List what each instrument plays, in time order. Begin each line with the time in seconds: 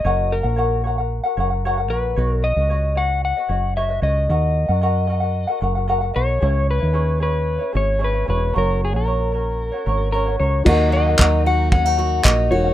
Already playing: electric slide guitar D#5
0.04 fingered electric bass F#1, ukulele F#4 A#4 C#5 F#5
0.32 electric slide guitar A#4
0.43 fingered electric bass A#1, ukulele F#4 A#4 F#5
0.56 ukulele F#4 A#4 C#5 F#5
0.84 ukulele F#4 A#4 C#5 F#5
0.98 ukulele F#4 A#4 F#5
1.24 ukulele F#4 A#4 F#5
1.37 fingered electric bass F#1, ukulele F#4 A#4 C#5 F#5
1.50 ukulele F#4 A#4 F#5
1.65 ukulele F#4 A#4 C#5 F#5
1.77 ukulele F#4 A#4 F#5
1.89 fingered electric bass A#1, ukulele F#4 A#4 C#5 F#5, electric slide guitar B4
2.16 fingered electric bass B1, ukulele F#4 B4 C#5 D#5
2.30 electric slide guitar A#4
2.44 electric slide guitar D#5
2.56 fingered electric bass C#2, ukulele F#4 B4 D#5
2.69 ukulele F#4 B4 C#5 D#5
2.95 ukulele F#4 B4 C#5 D#5, electric slide guitar F#5
3.25 electric slide guitar F#5
3.37 ukulele F#4 B4 D#5
3.49 fingered electric bass F#1, ukulele F#4 B4 C#5 D#5
3.77 ukulele F#4 B4 C#5 D#5, electric slide guitar E5
3.89 ukulele F#4 B4 D#5
4.02 fingered electric bass C#2, ukulele F#4 B4 C#5 D#5, electric slide guitar D#5
4.29 fingered electric bass D#2, ukulele F#4 A#4 D#5 F#5
4.68 fingered electric bass F#2, ukulele F#4 A#4 F#5
4.81 ukulele F#4 A#4 D#5 F#5
5.07 ukulele F#4 A#4 D#5 F#5
5.20 ukulele F#4 A#4 F#5
5.47 ukulele F#4 A#4 F#5
5.61 fingered electric bass F#1, ukulele F#4 A#4 D#5 F#5
5.75 ukulele F#4 A#4 F#5
5.88 ukulele F#4 A#4 D#5 F#5
6.01 ukulele F#4 A#4 F#5
6.14 fingered electric bass B1, ukulele F#4 A#4 D#5 F#5, electric slide guitar C#5
6.40 fingered electric bass C#2, ukulele C#4 E4 G#4 C#5
6.71 electric slide guitar B4
6.80 fingered electric bass D#2, ukulele C#4 E4 C#5
6.93 ukulele C#4 E4 G#4 C#5
7.20 ukulele C#4 E4 G#4 C#5, electric slide guitar B4
7.58 ukulele C#4 E4 C#5
7.72 fingered electric bass G#1, ukulele C#4 E4 G#4 C#5
7.77 electric slide guitar C#5
7.99 ukulele C#4 E4 G#4 C#5
8.04 electric slide guitar B4
8.13 ukulele C#4 E4 C#5
8.25 fingered electric bass E1, ukulele C#4 E4 G#4 C#5
8.30 electric slide guitar B4
8.53 fingered electric bass F#1, ukulele C#4 F#4 A#4 C#5
8.58 electric slide guitar A#4
8.85 electric slide guitar G#4
8.92 fingered electric bass A#1, ukulele C#4 F#4 C#5
8.96 electric slide guitar A#4
9.05 ukulele C#4 F#4 A#4 C#5
9.32 ukulele C#4 F#4 A#4 C#5
9.72 ukulele C#4 F#4 C#5
9.86 fingered electric bass G#1, ukulele C#4 F#4 A#4 C#5
10.12 ukulele C#4 F#4 A#4 C#5, electric slide guitar A#4
10.26 ukulele C#4 F#4 C#5
10.40 fingered electric bass C#2, ukulele C#4 F#4 A#4 C#5, electric slide guitar C#5
10.64 fingered electric bass D#2, steel-string acoustic guitar F#3, felt piano D#4 F#4 A#4, ukulele F#4 D#5, electric slide guitar D#5, kick, crash
10.68 ukulele A#4 F#5, felt piano F#5
10.92 steel-string acoustic guitar A#3, ukulele F#4 A#4 D#5, electric slide guitar D#5
10.97 ukulele F#5
11.06 ukulele F#4 A#4 F#5
11.19 fingered electric bass D#2, steel-string acoustic guitar D#4, ukulele F#4 A#4 D#5 F#5, kick, clap
11.45 ukulele F#4 A#4 D#5 F#5, steel-string acoustic guitar F#4, electric slide guitar F#5
11.72 steel-string acoustic guitar C#4, electric slide guitar F#5, kick
11.85 steel-string acoustic guitar D#4, ukulele F#4 A#4 F#5
11.97 ukulele F#4 A#4 D#5 F#5, steel-string acoustic guitar F#4
12.23 fingered electric bass A#1, steel-string acoustic guitar D#4, ukulele F#4 A#4 D#5 F#5, electric slide guitar D#5, kick, clap
12.50 fingered electric bass E1, felt piano D#4 F#4 A#4 F#5, steel-string acoustic guitar F#4, electric slide guitar C#5
12.64 ukulele F#4 A#4 F#5